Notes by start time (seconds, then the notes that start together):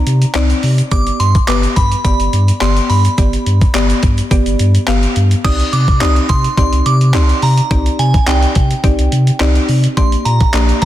Already playing: C4 D#4 D5 A#5
0.07 C3, closed hi-hat, shaker
0.22 closed hi-hat, shaker
0.35 C2 C4 D#4 D5, clap, closed hi-hat, shaker
0.50 closed hi-hat, shaker
0.63 C3, open hi-hat
0.78 closed hi-hat, shaker
0.91 G1 B3 G4 D5 D6, kick, closed hi-hat, shaker
1.07 closed hi-hat, shaker
1.20 G2 C6, closed hi-hat
1.35 kick, closed hi-hat, shaker
1.48 G1 B3 G4 B4 D6, clap, closed hi-hat, shaker
1.63 closed hi-hat, shaker
1.76 G2 B5, kick, closed hi-hat, shaker
1.92 closed hi-hat, shaker
2.04 G1 B3 G4 D5 B5, kick, closed hi-hat, shaker
2.20 G1, closed hi-hat, shaker
2.33 G2, closed hi-hat, shaker
2.48 closed hi-hat, shaker
2.61 G1 B3 G4 D5 C6, clap, closed hi-hat, shaker
2.77 closed hi-hat, shaker
2.90 G2 B5, open hi-hat
3.05 closed hi-hat, shaker
3.18 G1 B3 G4 D5, kick, closed hi-hat, shaker
3.33 closed hi-hat, shaker
3.46 G2, closed hi-hat
3.61 kick, closed hi-hat, shaker
3.74 G1 B3 G4 D5, clap, closed hi-hat, shaker
3.90 closed hi-hat, shaker
4.03 G2, kick, closed hi-hat, shaker
4.18 closed hi-hat, shaker
4.31 G1 B3 G4 D5, kick, closed hi-hat, shaker
4.46 G1, closed hi-hat, shaker
4.59 G2, closed hi-hat, shaker
4.75 closed hi-hat, shaker
4.87 G1 B3 G4 F5, clap, closed hi-hat, shaker
5.03 closed hi-hat, shaker
5.16 G2, closed hi-hat
5.31 closed hi-hat, shaker
5.44 C2 C4 D#4 G4 D5 D#6, kick, closed hi-hat, crash
5.60 closed hi-hat
5.73 C3 D6, closed hi-hat
5.88 kick, closed hi-hat
6.01 C2 C4 D#4 G4 D5 D#6, clap, closed hi-hat
6.16 closed hi-hat
6.29 C3 C6, kick, closed hi-hat
6.44 closed hi-hat
6.57 C2 C4 D#4 G4 D5 C6, kick, closed hi-hat
6.73 C2, closed hi-hat
6.86 C3 D6, closed hi-hat
7.01 closed hi-hat
7.14 C2 C4 D#4 G4 D5 C6, clap, closed hi-hat
7.29 closed hi-hat
7.42 C3 A#5, open hi-hat
7.58 closed hi-hat
7.71 C2 C4 D#4 G4 D5, kick, closed hi-hat
7.86 closed hi-hat
7.99 C3 G#5, closed hi-hat
8.14 kick, closed hi-hat
8.27 C2 C4 D#4 G4 D5 G5, clap, closed hi-hat
8.43 closed hi-hat
8.55 C3, kick, closed hi-hat
8.71 closed hi-hat
8.84 C2 C4 D#4 G4 D5, kick, closed hi-hat
8.99 C2, closed hi-hat
9.12 C3, closed hi-hat
9.27 closed hi-hat
9.40 C2 C4 D#4 G4 D5, clap, closed hi-hat
9.55 closed hi-hat
9.69 C3, open hi-hat
9.84 closed hi-hat
9.97 A#1 A#3 D4 G4 D5 C6, kick, closed hi-hat
10.12 closed hi-hat
10.25 A#2 A#5, closed hi-hat
10.40 kick, closed hi-hat
10.54 A#1 A#3 D4 G4 D5, clap, closed hi-hat
10.69 closed hi-hat
10.82 A#5, closed hi-hat